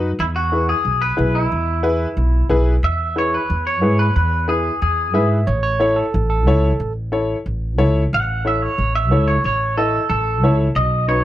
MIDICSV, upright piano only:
0, 0, Header, 1, 2, 480
1, 0, Start_track
1, 0, Tempo, 330033
1, 279, Time_signature, 4, 2, 24, 8
1, 16347, End_track
2, 0, Start_track
2, 0, Title_t, "Upright piano"
2, 0, Program_c, 0, 0
2, 757, Note_on_c, 0, 64, 66
2, 771, Note_on_c, 0, 68, 53
2, 773, Note_on_c, 0, 71, 64
2, 1094, Note_off_c, 0, 64, 0
2, 1101, Note_off_c, 0, 68, 0
2, 1102, Note_off_c, 0, 71, 0
2, 1700, Note_on_c, 0, 64, 73
2, 1704, Note_on_c, 0, 68, 64
2, 1706, Note_on_c, 0, 71, 89
2, 2045, Note_off_c, 0, 64, 0
2, 2047, Note_off_c, 0, 68, 0
2, 2048, Note_off_c, 0, 71, 0
2, 2663, Note_on_c, 0, 64, 84
2, 2670, Note_on_c, 0, 68, 61
2, 2670, Note_on_c, 0, 71, 93
2, 3006, Note_off_c, 0, 64, 0
2, 3010, Note_off_c, 0, 68, 0
2, 3010, Note_off_c, 0, 71, 0
2, 3630, Note_on_c, 0, 64, 88
2, 3636, Note_on_c, 0, 68, 87
2, 3646, Note_on_c, 0, 71, 93
2, 3969, Note_off_c, 0, 64, 0
2, 3972, Note_off_c, 0, 68, 0
2, 3978, Note_off_c, 0, 71, 0
2, 4593, Note_on_c, 0, 64, 59
2, 4598, Note_on_c, 0, 68, 53
2, 4598, Note_on_c, 0, 71, 70
2, 4931, Note_off_c, 0, 64, 0
2, 4934, Note_off_c, 0, 68, 0
2, 4934, Note_off_c, 0, 71, 0
2, 5548, Note_on_c, 0, 64, 73
2, 5558, Note_on_c, 0, 68, 70
2, 5570, Note_on_c, 0, 71, 77
2, 5889, Note_off_c, 0, 64, 0
2, 5894, Note_off_c, 0, 68, 0
2, 5900, Note_off_c, 0, 71, 0
2, 6512, Note_on_c, 0, 64, 64
2, 6517, Note_on_c, 0, 68, 60
2, 6523, Note_on_c, 0, 71, 66
2, 6851, Note_off_c, 0, 64, 0
2, 6853, Note_off_c, 0, 68, 0
2, 6856, Note_off_c, 0, 71, 0
2, 7472, Note_on_c, 0, 64, 73
2, 7476, Note_on_c, 0, 68, 70
2, 7489, Note_on_c, 0, 71, 82
2, 7811, Note_off_c, 0, 64, 0
2, 7813, Note_off_c, 0, 68, 0
2, 7820, Note_off_c, 0, 71, 0
2, 8430, Note_on_c, 0, 64, 78
2, 8442, Note_on_c, 0, 73, 97
2, 8447, Note_on_c, 0, 69, 73
2, 8771, Note_off_c, 0, 64, 0
2, 8777, Note_off_c, 0, 73, 0
2, 8779, Note_off_c, 0, 69, 0
2, 9409, Note_on_c, 0, 69, 77
2, 9413, Note_on_c, 0, 64, 87
2, 9419, Note_on_c, 0, 73, 96
2, 9740, Note_off_c, 0, 69, 0
2, 9742, Note_off_c, 0, 64, 0
2, 9745, Note_off_c, 0, 73, 0
2, 10355, Note_on_c, 0, 69, 74
2, 10356, Note_on_c, 0, 64, 70
2, 10366, Note_on_c, 0, 73, 85
2, 10694, Note_off_c, 0, 64, 0
2, 10694, Note_off_c, 0, 69, 0
2, 10699, Note_off_c, 0, 73, 0
2, 11318, Note_on_c, 0, 69, 77
2, 11322, Note_on_c, 0, 73, 97
2, 11323, Note_on_c, 0, 64, 87
2, 11656, Note_off_c, 0, 69, 0
2, 11658, Note_off_c, 0, 64, 0
2, 11658, Note_off_c, 0, 73, 0
2, 12285, Note_on_c, 0, 64, 67
2, 12290, Note_on_c, 0, 69, 63
2, 12297, Note_on_c, 0, 73, 70
2, 12620, Note_off_c, 0, 64, 0
2, 12622, Note_off_c, 0, 69, 0
2, 12626, Note_off_c, 0, 73, 0
2, 13252, Note_on_c, 0, 64, 77
2, 13256, Note_on_c, 0, 69, 69
2, 13261, Note_on_c, 0, 73, 87
2, 13583, Note_off_c, 0, 64, 0
2, 13585, Note_off_c, 0, 69, 0
2, 13588, Note_off_c, 0, 73, 0
2, 14215, Note_on_c, 0, 64, 62
2, 14220, Note_on_c, 0, 69, 60
2, 14229, Note_on_c, 0, 75, 77
2, 14545, Note_off_c, 0, 64, 0
2, 14548, Note_off_c, 0, 69, 0
2, 14552, Note_off_c, 0, 75, 0
2, 15178, Note_on_c, 0, 64, 80
2, 15178, Note_on_c, 0, 69, 69
2, 15187, Note_on_c, 0, 73, 82
2, 15507, Note_off_c, 0, 64, 0
2, 15507, Note_off_c, 0, 69, 0
2, 15512, Note_off_c, 0, 73, 0
2, 16116, Note_on_c, 0, 63, 69
2, 16121, Note_on_c, 0, 66, 55
2, 16132, Note_on_c, 0, 71, 78
2, 16347, Note_off_c, 0, 63, 0
2, 16347, Note_off_c, 0, 66, 0
2, 16347, Note_off_c, 0, 71, 0
2, 16347, End_track
0, 0, End_of_file